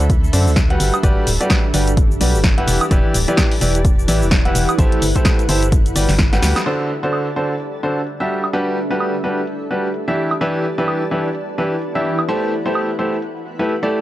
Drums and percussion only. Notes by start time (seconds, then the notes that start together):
0.01 cabasa
0.10 kick, closed hi-hat, cabasa
0.24 cabasa
0.33 open hi-hat, cabasa
0.47 cabasa
0.56 kick, snare, closed hi-hat, cabasa
0.70 closed hi-hat
0.80 open hi-hat, cabasa
0.94 closed hi-hat, cabasa, high woodblock
1.03 kick, closed hi-hat, cabasa
1.27 open hi-hat, cabasa
1.41 closed hi-hat, cabasa
1.50 kick, snare, closed hi-hat, cabasa, high woodblock
1.74 open hi-hat, cabasa
1.87 closed hi-hat, cabasa
1.97 kick, closed hi-hat, cabasa
2.11 cabasa
2.21 open hi-hat, cabasa
2.35 cabasa
2.44 kick, snare, closed hi-hat, cabasa
2.58 closed hi-hat
2.68 open hi-hat, cabasa
2.81 closed hi-hat, cabasa, high woodblock
2.91 kick, closed hi-hat, cabasa
3.14 open hi-hat, cabasa
3.28 closed hi-hat, cabasa
3.37 kick, snare, closed hi-hat, cabasa, high woodblock
3.51 open hi-hat
3.61 open hi-hat, cabasa
3.75 closed hi-hat, cabasa
3.85 kick, closed hi-hat, cabasa
3.99 cabasa
4.08 open hi-hat, cabasa
4.22 cabasa
4.31 kick, snare, closed hi-hat, cabasa
4.45 closed hi-hat
4.55 open hi-hat, cabasa
4.69 closed hi-hat, cabasa, high woodblock
4.78 kick, closed hi-hat, cabasa
4.92 closed hi-hat
5.02 open hi-hat, cabasa
5.16 kick, closed hi-hat, cabasa
5.25 kick, snare, closed hi-hat, cabasa, high woodblock
5.39 closed hi-hat, cabasa
5.49 open hi-hat, cabasa
5.62 closed hi-hat, cabasa
5.72 kick, closed hi-hat, cabasa
5.86 closed hi-hat, cabasa
5.96 open hi-hat, cabasa
6.09 snare, open hi-hat, cabasa
6.19 kick, snare, closed hi-hat, cabasa
6.33 snare, closed hi-hat, cabasa
6.42 snare, open hi-hat, cabasa
6.56 snare, closed hi-hat, cabasa, high woodblock
6.66 crash, cabasa
6.80 cabasa
7.04 cabasa
7.13 closed hi-hat, cabasa, high woodblock
7.27 cabasa
7.50 closed hi-hat, cabasa
7.60 closed hi-hat, cabasa
7.74 cabasa
7.97 cabasa
8.07 closed hi-hat, cabasa
8.44 cabasa, high woodblock
8.54 closed hi-hat
8.68 cabasa
8.91 cabasa
9.00 closed hi-hat, cabasa, high woodblock
9.15 cabasa
9.38 closed hi-hat, cabasa
9.47 closed hi-hat, cabasa
9.62 cabasa
9.85 cabasa
9.94 closed hi-hat, cabasa
10.31 cabasa, high woodblock
10.41 closed hi-hat
10.55 cabasa
10.79 cabasa
10.88 closed hi-hat, cabasa, high woodblock
11.02 cabasa
11.25 closed hi-hat, cabasa
11.35 closed hi-hat, cabasa
11.49 cabasa
11.72 cabasa
11.82 closed hi-hat, cabasa
12.19 cabasa, high woodblock
12.28 closed hi-hat
12.43 cabasa
12.66 closed hi-hat, cabasa
12.75 closed hi-hat, cabasa, high woodblock
12.90 cabasa
13.12 closed hi-hat, cabasa
13.22 closed hi-hat, cabasa
13.36 cabasa
13.60 cabasa
13.69 closed hi-hat, cabasa
13.83 closed hi-hat